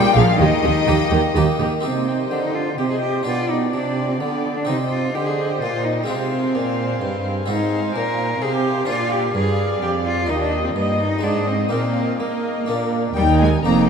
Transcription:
Already playing: harpsichord A#2 A#3 D4 G#4, cello G3, violin section G5
0.15 double bass section A#1, cello section A#2, harpsichord A#2, cello F3, viola section G#4, violin section F5
0.39 double bass section D#2, cello section D#3, harpsichord D#3, cello D#3, viola section G4, violin section D#5
0.63 double bass section D#2, cello section D#3, harpsichord D#3, viola section G4
0.87 double bass section D#2, cello section D#3, harpsichord D#3 A#3 D#4 G4, viola section G4
1.11 double bass section D#2, harpsichord D#3, cello section D#3, viola section G4
1.36 double bass section D#2, cello section D#3, harpsichord D#3 A#3 D#4 G4, viola section G4
1.60 double bass section D#2, harpsichord D#3, cello section D#3, viola section G4
1.80 harpsichord C4 D#4 G4, cello C4, viola section C5, violin section D#5
1.85 harpsichord C3, cello section C3, violin section G5
1.96 cello A#3
2.08 cello C4
2.31 harpsichord D3, cello section D3, cello D4
2.43 cello D#4
2.55 cello F4
2.78 harpsichord C3, cello section C3, cello G4, viola section C5, violin section D#5 G5
2.91 cello G#4
3.02 cello G4
3.23 cello section B2, harpsichord B2 D4 G4, cello F4, viola section D5, violin section D5 G5
3.50 cello D#4
3.73 cello section C3, harpsichord C3, cello D4, viola section D5, violin section D5 G5
4.09 cello C4
4.20 cello section D3, harpsichord D3, cello B3, viola section D5, violin section D5 G5
4.56 cello D4
4.65 harpsichord C3 C4 G4, cello section C3, cello D#4, viola section C5, violin section D#5 G5
4.91 cello F4
5.14 cello section D3, harpsichord D3, cello G4, viola section C5, violin section D#5 G5
5.26 cello G#4
5.51 cello G4
5.62 cello section A#2, harpsichord A#2, cello F4
5.85 cello D#4
6.04 harpsichord G#3 C4 F4
6.08 harpsichord C3, cello section C3, cello C4, viola section C5, violin section F5 G#5
6.55 harpsichord A#2, cello section A#2
7.02 harpsichord G2, cello section G2
7.46 cello section G#2, harpsichord G#2 C4 F4, cello D#4, viola section C5, violin section F5 G#5
7.95 cello section A#2, harpsichord A#2, cello A#4
8.41 cello section C3, harpsichord C3, cello G#4, viola section C5, violin section F5 G#5
8.53 cello G4
8.85 harpsichord A#2 D4 F4, cello section A#2, cello F4, viola section D5, violin section F5 G#5
9.12 cello G4
9.34 cello section G2, harpsichord G2, cello G#4, viola section D5, violin section F5 G#5
9.82 cello section F2, harpsichord F2, cello G4
10.06 cello F4
10.27 cello section D#2, harpsichord D#2 D#4, cello D#4, violin section D#5 G5, viola section D#5
10.40 cello D4
10.64 cello C4
10.75 cello section G2, harpsichord G2, cello A#3, violin section D#5 G5, viola section D#5
11.00 cello D#4
11.19 harpsichord G#3 D#4
11.23 cello section G#2, harpsichord G#2, cello D4, violin section D#5 G#5, viola section D#5
11.47 cello C4, violin section G5
11.69 cello section A#2, harpsichord A#2 A#3 D#4, cello C4, viola section A#4, violin section D#5 F5
12.20 harpsichord A#3, cello section A#3, cello A#3, viola section A#4, violin section D#5 F5
12.66 cello section A#2, harpsichord A#2 A#3 D4, viola section A#4, violin section D5 F5
13.16 cello section D#2, harpsichord D#2, double bass section D#2, cello G3, viola section D#4, violin section A#4 G5
13.41 cello G#3, violin section G#5
13.64 double bass section F1, cello section F2, harpsichord F2 A#3 D#4, cello A#3, viola section D#4, violin section A#4 A#5

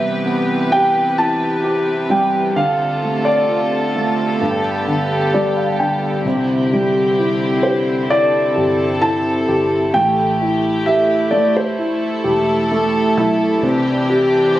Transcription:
Already playing: grand piano C3 G3 B3 E5, string section C3 E3 G4 B4
0.26 grand piano B3
0.71 grand piano G4 G5
1.18 grand piano E4 A5
1.64 grand piano G4
2.10 grand piano G3 G5
2.56 grand piano D3 F5, string section D3 F4 A4
3.03 grand piano A3
3.25 grand piano D5
3.48 grand piano F4
3.96 grand piano A3
4.41 grand piano G2, string section B3 G4
4.87 grand piano D3
5.34 grand piano G3 D5
5.57 grand piano F5
5.80 grand piano D3 G5
6.25 fingered electric bass C2, grand piano C3, string section D3 C4 E4 G4
6.73 grand piano G3
7.19 grand piano E4
7.63 grand piano G4 C5
8.10 grand piano E4 D5, string section A4
8.56 fingered electric bass G1, grand piano G4
9.01 grand piano E4 A5
9.48 fingered electric bass G1, grand piano G4
9.94 fingered electric bass A1, grand piano A3 G5, string section A3 E4 G4
10.42 grand piano E4
10.86 grand piano G4 E5
11.31 grand piano A3 D5
11.57 grand piano C5
11.79 grand piano E4, string section A4
12.24 fingered electric bass E1, grand piano G4
12.72 grand piano A3
13.17 fingered electric bass B1, grand piano E4
13.63 fingered electric bass C2, string section E3 D4 G4, grand piano C4
14.10 grand piano G4
14.55 grand piano C5

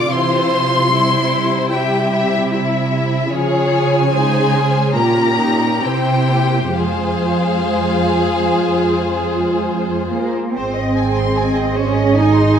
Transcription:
Already playing: viola section D3 F4, violin section F4 D5 D6
0.11 cello section C3, viola section E3 E4, violin section C5 C6
0.52 viola section F3
0.92 viola section G3 E4, violin section E4 C5
1.33 viola section G3
1.70 violin section E4 E5 G5, viola section G4
2.11 violin section E5
2.50 viola section E4, violin section E5
2.91 viola section E4
3.30 cello section C#3, viola section F3 F4, violin section G#4 C#5
3.71 viola section F3, violin section G#5
4.14 viola section G#3 D#4, violin section G#4 C5
4.55 viola section C#4
4.95 cello section A#2, viola section C#4 F4, violin section G4 A#4 A#5
5.40 viola section D#4
5.82 cello section C3, viola section C4 E4, violin section G4 C5 G5
6.29 viola section A#3
6.75 cello section F2, viola section G#3 F4, violin section G#4 C5 F5
10.12 cello section A#3
10.56 double bass section G#1, cello section C4, viola section G#4, violin section C5 D#5
10.78 violin section D#5
10.97 violin section G#5
11.18 violin section C6
11.36 violin section G#5
11.55 violin section D#5
11.75 cello section C#4, violin section C5
11.96 violin section D#5
12.16 cello section D#4, violin section G#5
12.34 violin section C6
12.55 violin section G#5

